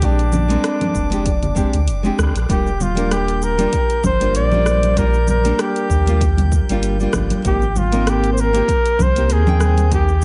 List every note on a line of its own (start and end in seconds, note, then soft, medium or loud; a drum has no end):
0.00 0.58 A#1 medium
0.00 0.21 G#3 medium
0.00 0.21 C4 medium
0.00 0.22 D4 medium
0.00 0.22 G4 medium
0.00 2.52 D6 medium
0.00 kick loud
0.00 closed hi-hat medium
0.00 shaker soft
0.05 1.89 D4 medium
0.19 closed hi-hat soft
0.19 shaker soft
0.32 high conga medium
0.32 low conga medium
0.32 shaker medium
0.48 1.07 G#3 medium
0.48 1.08 C4 medium
0.48 1.08 D4 medium
0.48 1.09 A#4 medium
0.48 closed hi-hat soft
0.48 high conga medium
0.48 shaker soft
0.64 cross-stick medium
0.64 closed hi-hat medium
0.64 shaker soft
0.81 closed hi-hat soft
0.81 high conga medium
0.81 low conga medium
0.81 shaker soft
0.95 1.66 F1 medium
0.95 kick medium
0.95 shaker medium
1.10 1.27 G#3 medium
1.10 1.28 C4 medium
1.10 1.28 D4 medium
1.10 1.28 G4 medium
1.10 closed hi-hat soft
1.10 shaker soft
1.26 kick loud
1.26 closed hi-hat medium
1.26 shaker soft
1.43 closed hi-hat soft
1.43 low conga medium
1.43 shaker soft
1.55 1.75 G#3 medium
1.55 1.75 C4 medium
1.55 1.76 D4 medium
1.55 1.76 G4 loud
1.55 kick loud
1.55 shaker medium
1.73 1.89 D2 medium
1.73 closed hi-hat soft
1.73 shaker soft
1.88 2.11 F1 medium
1.88 closed hi-hat medium
1.88 shaker soft
2.03 2.31 G#3 medium
2.03 2.32 C4 medium
2.03 2.32 D4 medium
2.03 2.33 G4 medium
2.03 shaker soft
2.18 2.31 D2 medium
2.18 kick medium
2.18 cross-stick medium
2.18 shaker medium
2.35 2.46 A#1 medium
2.35 closed hi-hat soft
2.35 shaker soft
2.49 3.67 D#1 loud
2.49 2.68 G3 medium
2.49 2.68 A#3 medium
2.49 2.69 D4 medium
2.49 2.69 F4 medium
2.49 2.84 G4 medium
2.49 10.24 G6 medium
2.49 kick loud
2.49 closed hi-hat medium
2.49 shaker soft
2.67 shaker soft
2.80 3.12 F4 medium
2.80 high conga medium
2.80 low conga medium
2.80 shaker medium
2.95 3.54 G3 medium
2.95 3.55 A#3 medium
2.95 3.55 D4 medium
2.95 3.56 A#4 medium
2.95 closed hi-hat soft
2.95 shaker soft
3.11 3.45 G4 medium
3.11 cross-stick medium
3.11 closed hi-hat medium
3.11 shaker soft
3.28 closed hi-hat soft
3.28 shaker soft
3.42 4.05 A#4 medium
3.42 shaker medium
3.58 3.75 G3 medium
3.58 3.75 A#3 medium
3.58 3.76 D4 medium
3.58 3.76 F4 medium
3.58 closed hi-hat soft
3.58 shaker soft
3.73 kick loud
3.73 closed hi-hat medium
3.73 shaker soft
3.90 closed hi-hat soft
3.90 shaker soft
4.04 4.37 G1 loud
4.04 4.34 C5 loud
4.04 kick loud
4.04 high conga medium
4.04 low conga medium
4.04 shaker medium
4.20 4.48 G3 medium
4.20 4.48 A#3 medium
4.20 4.48 D4 medium
4.20 4.49 F4 loud
4.20 closed hi-hat soft
4.20 shaker soft
4.35 5.53 A#1 medium
4.35 4.99 D5 loud
4.35 closed hi-hat medium
4.35 shaker soft
4.51 4.94 G3 medium
4.51 4.94 A#3 medium
4.51 4.94 D4 medium
4.51 4.95 F4 medium
4.51 low conga medium
4.51 shaker soft
4.66 cross-stick medium
4.66 high conga medium
4.66 shaker medium
4.83 closed hi-hat soft
4.83 high conga medium
4.83 shaker soft
4.97 5.16 G3 medium
4.97 5.16 A#3 medium
4.97 5.17 D4 medium
4.97 5.17 F4 medium
4.97 5.29 A#4 loud
4.97 kick loud
4.97 closed hi-hat medium
4.97 shaker soft
5.14 shaker soft
5.27 5.62 A#4 medium
5.27 high conga medium
5.27 low conga medium
5.27 shaker medium
5.44 6.02 G3 medium
5.44 6.03 A#3 medium
5.44 6.03 D4 medium
5.44 6.04 A#4 medium
5.44 closed hi-hat soft
5.44 shaker soft
5.59 6.53 G4 medium
5.59 cross-stick medium
5.59 closed hi-hat medium
5.59 shaker soft
5.76 closed hi-hat soft
5.76 shaker soft
5.90 6.61 D#2 medium
5.90 kick medium
5.90 shaker medium
6.06 6.22 G3 medium
6.06 6.23 A#3 medium
6.06 6.23 D4 medium
6.06 6.24 F4 medium
6.06 closed hi-hat soft
6.06 shaker soft
6.21 kick loud
6.21 closed hi-hat medium
6.21 shaker soft
6.37 closed hi-hat soft
6.37 high conga medium
6.37 low conga medium
6.37 shaker soft
6.52 kick loud
6.52 shaker medium
6.68 7.07 G1 medium
6.68 6.96 G3 medium
6.68 6.96 A#3 medium
6.68 6.97 D4 medium
6.68 6.97 F4 loud
6.68 closed hi-hat soft
6.68 shaker soft
6.83 closed hi-hat medium
6.83 shaker soft
7.00 7.42 G3 medium
7.00 7.42 A#3 medium
7.00 7.42 D4 medium
7.00 7.43 F4 medium
7.00 shaker soft
7.13 7.37 G1 medium
7.13 kick medium
7.13 cross-stick medium
7.13 low conga medium
7.13 shaker medium
7.30 closed hi-hat soft
7.30 high conga medium
7.30 shaker soft
7.44 8.62 G#1 medium
7.44 7.63 A#3 medium
7.44 7.64 C4 medium
7.44 7.64 D#4 medium
7.44 7.64 G4 medium
7.44 7.80 G4 medium
7.44 kick loud
7.44 closed hi-hat medium
7.44 shaker soft
7.62 shaker soft
7.76 8.11 F4 medium
7.76 high conga medium
7.76 low conga medium
7.76 shaker medium
7.92 8.50 A#3 medium
7.92 8.51 C4 medium
7.92 8.51 D#4 medium
7.92 8.52 A#4 medium
7.92 closed hi-hat soft
7.92 shaker soft
8.07 8.32 G4 loud
8.07 cross-stick medium
8.07 closed hi-hat medium
8.07 shaker soft
8.24 closed hi-hat soft
8.24 shaker soft
8.33 8.42 C5 medium
8.38 9.04 A#4 loud
8.38 shaker medium
8.53 8.70 A#3 medium
8.53 8.70 C4 medium
8.53 8.71 D#4 medium
8.53 8.71 G4 loud
8.53 closed hi-hat soft
8.53 shaker soft
8.68 kick loud
8.68 closed hi-hat medium
8.68 shaker soft
8.86 closed hi-hat soft
8.86 shaker soft
8.99 9.32 C2 loud
8.99 9.34 C5 loud
8.99 kick loud
8.99 high conga medium
8.99 low conga medium
8.99 shaker medium
9.15 9.43 A#3 medium
9.15 9.43 C4 medium
9.15 9.44 D#4 medium
9.15 9.44 G4 medium
9.15 closed hi-hat soft
9.15 shaker soft
9.30 10.24 D#2 medium
9.30 9.93 G#4 loud
9.30 closed hi-hat medium
9.30 shaker soft
9.46 9.88 A#3 medium
9.46 9.89 C4 medium
9.46 9.89 D#4 medium
9.46 9.90 G5 medium
9.46 low conga medium
9.46 shaker soft
9.60 cross-stick medium
9.60 high conga medium
9.60 shaker medium
9.77 closed hi-hat soft
9.77 high conga loud
9.77 shaker soft
9.90 10.10 A#3 medium
9.90 10.10 C4 medium
9.90 10.11 D#4 medium
9.90 10.11 G4 medium
9.90 10.24 G4 medium
9.90 kick loud
9.90 closed hi-hat medium
9.90 shaker soft
10.09 shaker soft